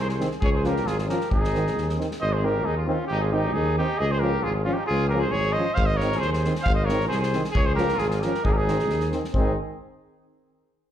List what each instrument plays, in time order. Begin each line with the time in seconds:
Already playing: tuba C2
0.00 cornet C5
0.09 trumpet G#4, cornet C5, snare
0.20 euphonium D#3, french horn C4, snare
0.31 snare
0.41 tuba C#2, trumpet G#4, cornet C#5, kick
0.51 trumpet G#4 A#4, cornet C5 C#5
0.64 euphonium F3, french horn C#4, trumpet G4, cornet A#4, snare
0.76 snare
0.86 tuba G#1, trumpet F4, cornet G#4, snare
0.98 trumpet F4, cornet G#4, snare
1.08 euphonium F3, french horn C#4, trumpet G4, cornet A#4, snare
1.21 snare
1.31 tuba G#1, trumpet D#4, cornet G#4, kick
1.44 snare
1.53 euphonium D#3, french horn C4, snare
1.67 snare
1.76 tuba D#2, snare
1.89 snare
1.97 euphonium D#3, french horn C4, snare
2.11 snare
2.21 tuba G#1, trumpet C5, cornet D#5
2.33 trumpet G#4, cornet C5
2.43 euphonium D#3, french horn C4, trumpet G4, cornet A#4
2.65 tuba D#2, trumpet D#4, cornet G#4
2.78 trumpet F4, cornet G#4
2.86 euphonium D#3, french horn C4, trumpet C#4, cornet F4
3.07 tuba G#1, trumpet D#4, cornet G4
3.20 trumpet F4, cornet G#4
3.33 euphonium D#3, french horn C4, trumpet D#4, cornet G4
3.53 tuba D#2, trumpet D#4, cornet G#4
3.77 euphonium D#3, french horn C4, trumpet D#4, cornet G4
3.99 tuba C#2, trumpet G#4, cornet D#5
4.09 trumpet G#4, cornet C5
4.20 euphonium F3, french horn C#4, trumpet G4, cornet A#4
4.43 tuba G#1, trumpet F4, cornet G#4
4.52 trumpet F4, cornet G#4
4.64 euphonium F3, trumpet C#4, french horn C#4, cornet F4
4.73 trumpet D#4, cornet G4
4.86 tuba C#2, trumpet F4, cornet G#4
5.07 trumpet G4, cornet A#4
5.13 euphonium F3, french horn C#4
5.17 trumpet G#4, cornet C5
5.28 trumpet G#4, cornet C#5
5.33 tuba G#1
5.52 trumpet C5, cornet D#5
5.57 euphonium F3, french horn C#4
5.73 trumpet C5, cornet F5
5.77 tuba G#1, kick
5.82 trumpet C5, cornet D#5
5.95 trumpet A#4, cornet C#5
6.00 euphonium D#3, french horn C4, snare
6.12 snare
6.16 trumpet G#4, cornet C5
6.22 tuba D#2, snare
6.29 trumpet G#4, cornet C5
6.33 snare
6.44 euphonium D#3, french horn C4, snare
6.55 snare
6.60 trumpet C5, cornet F5
6.66 tuba G#1, kick
6.73 trumpet C5, cornet D#5
6.85 trumpet A#4, cornet C#5
6.89 euphonium D#3, french horn C4, snare
7.00 snare
7.08 tuba C2, trumpet G#4, cornet C5, snare
7.17 trumpet G#4, cornet C5
7.23 snare
7.33 euphonium D#3, french horn C4, snare
7.44 snare
7.51 trumpet G#4
7.55 tuba C#2, cornet C#5, kick
7.62 trumpet G#4, cornet C5
7.74 trumpet G4, cornet A#4
7.78 euphonium F3, french horn C#4, snare
7.88 snare
7.94 trumpet F4
7.99 tuba G#1, cornet G#4, snare
8.07 trumpet F4, cornet G#4, snare
8.20 trumpet G4, cornet A#4, snare
8.24 euphonium F3, french horn C#4
8.34 snare
8.42 tuba G#1, trumpet D#4, cornet G#4, kick
8.50 trumpet G4, cornet A#4
8.56 trumpet D#4, cornet G#4
8.68 euphonium D#3, french horn C4, snare
8.79 snare
8.89 tuba D#2, snare
9.00 snare
9.11 euphonium D#3, french horn C4, snare
9.24 snare
9.33 tuba G#1, euphonium D#3, french horn C4, trumpet D#4, cornet G#4, kick